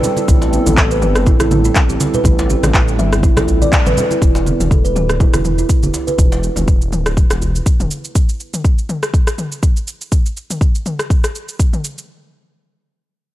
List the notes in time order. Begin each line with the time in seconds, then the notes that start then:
Already playing: G3 C4 E4 A4
0.03 low conga, cabasa
0.17 E4, muted conga, cabasa
0.28 A1 E4, kick, high conga, djembe bass, cabasa
0.42 djembe slap, cabasa
0.53 B3, muted conga, cabasa
0.66 A1, mid tom, djembe tone, high conga, cabasa
0.77 A4, kick, clap, djembe tone, cabasa
0.91 B4, muted conga, cabasa
1.02 G1 G4, mid tom, cabasa
1.15 cross-stick, cabasa
1.26 E4, kick, low conga, cabasa
1.40 A1 E4, cross-stick, muted conga, cabasa
1.51 mid tom, high conga, cabasa
1.65 E4, cabasa
1.75 kick, clap, muted conga, cabasa
1.89 A1 G4, cabasa
2.00 djembe slap, high conga, cabasa
2.14 B4, muted conga, low conga, cabasa
2.24 A1 E4, kick, high conga, djembe bass, cabasa
2.39 djembe slap, cabasa
2.50 G4, muted conga, cabasa
2.63 A1, cross-stick, mid tom, djembe slap, high conga, djembe tone, cabasa
2.74 E4, kick, clap, cabasa
2.88 muted conga, cabasa
2.99 G1 E5, mid tom, cabasa
3.13 cross-stick, djembe tone, cabasa
3.23 E4, kick, high conga, cabasa
3.37 A1 A4, cross-stick, djembe slap, muted conga, low conga, cabasa
3.48 djembe bass, cabasa
3.62 D5, high conga, cabasa
3.72 kick, clap, muted conga, cabasa
3.86 A1 B4, mid tom, high conga, cabasa
3.97 low conga, cabasa
4.11 E4, muted conga, cabasa
4.22 E1 E4, kick, djembe bass, cabasa
4.35 djembe slap, cabasa
4.46 B3, muted conga, high conga, cabasa
4.60 E1, mid tom, djembe tone, cabasa
4.71 A4, kick, high conga, cabasa
4.84 B4, muted conga, cabasa
4.95 D1 G4, mid tom, cabasa
5.09 cross-stick, cabasa
5.20 E4, kick, low conga, cabasa
5.34 E1 E4, cross-stick, muted conga, high conga, cabasa
5.45 mid tom, cabasa
5.58 E4, cabasa
5.69 kick, muted conga, cabasa
5.83 E1 G4, high conga, cabasa
5.94 djembe slap, djembe tone, cabasa
6.07 B4, muted conga, cabasa
6.18 E1, kick, djembe bass, cabasa
6.32 djembe slap, cabasa
6.43 cabasa
6.56 E1, mid tom, djembe tone, cabasa
6.68 kick, cabasa
6.82 cabasa
6.93 D1, mid tom, cabasa
7.06 cross-stick, djembe tone, cabasa
7.17 kick, cabasa
7.30 E1, cross-stick, djembe slap, cabasa
7.42 djembe bass, cabasa
7.55 cabasa
7.66 kick, cabasa
7.80 E1, mid tom, cabasa
7.91 cabasa
8.04 cabasa
8.15 kick, cabasa
8.29 cabasa
8.40 cabasa
8.54 mid tom, cabasa
8.65 kick, cabasa
8.78 cabasa
8.89 mid tom, cabasa
9.03 cross-stick, cabasa
9.14 kick, cabasa
9.27 cross-stick, cabasa
9.38 mid tom, cabasa
9.52 cabasa
9.63 kick, cabasa
9.77 cabasa
9.88 cabasa
10.01 cabasa
10.12 kick, cabasa
10.26 cabasa
10.37 cabasa
10.50 mid tom, cabasa
10.61 kick, cabasa
10.75 cabasa
10.86 mid tom, cabasa
10.99 cross-stick, cabasa
11.10 kick, cabasa
11.24 cross-stick, cabasa
11.35 cabasa
11.49 cabasa
11.60 kick, cabasa
11.73 mid tom, cabasa
11.84 cabasa
11.98 cabasa